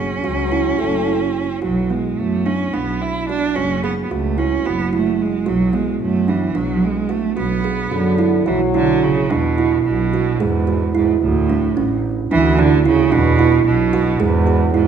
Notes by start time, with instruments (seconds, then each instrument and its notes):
Already playing: double bass F#1, cello C#4, kalimba G#4
0.23 double bass C#2, french horn F#3, kalimba F#4
0.52 kalimba E4
0.79 double bass F#1, french horn A3, kalimba F#4
1.07 kalimba E4
1.62 double bass B1, cello F#3, kalimba F#4
1.90 cello G#3, kalimba B3
2.17 double bass F#2, cello A3
2.46 cello C#4, kalimba D4
2.73 double bass B1, cello B3, kalimba D4
3.01 cello E4
3.29 cello D4, kalimba F#4
3.55 double bass F#1, cello C#4, kalimba F#4
3.83 cello B3, kalimba G#4
4.03 cello B3
4.10 double bass C#2, cello A3, kalimba F#4
4.38 cello C#4, kalimba E4
4.65 double bass F#1, cello B3, kalimba F#4
4.93 cello A3, kalimba E4
5.22 cello G#3
5.46 double bass B1, cello F#3, kalimba F#4
5.73 cello G#3, kalimba B3
6.01 double bass F#2, cello A3
6.28 cello E3, kalimba D4
6.55 double bass B1, cello F#3, kalimba D4
6.84 cello G#3
7.09 cello A3, kalimba F#4
7.37 double bass B1, cello B3, kalimba F#4
7.64 kalimba G#4
7.91 double bass F#2, french horn D3, kalimba F#4
8.18 kalimba E4
8.46 double bass B1, cello E3, french horn F#3, kalimba F#4
8.74 cello D3, kalimba E4
9.04 cello C#3
9.31 double bass E2, cello B2, kalimba D4
9.58 kalimba E4
9.85 double bass B1, cello B2
10.13 kalimba F#4
10.40 double bass E2, cello G#2, kalimba G#4
10.67 kalimba F#4
10.95 cello G#2, kalimba E4
11.22 double bass D2, cello A2
11.50 kalimba D4
11.76 double bass A1, kalimba C#4
12.31 double bass D2, cello E3, kalimba D4
12.59 cello D3, kalimba E4
12.86 cello C#3, kalimba E4
13.12 double bass E2, cello B2, kalimba D4
13.39 kalimba E4
13.65 double bass B1, cello B2
13.93 kalimba F#4
14.19 double bass E2, cello G#2, kalimba G#4
14.47 kalimba F#4
14.74 cello G#2, kalimba E4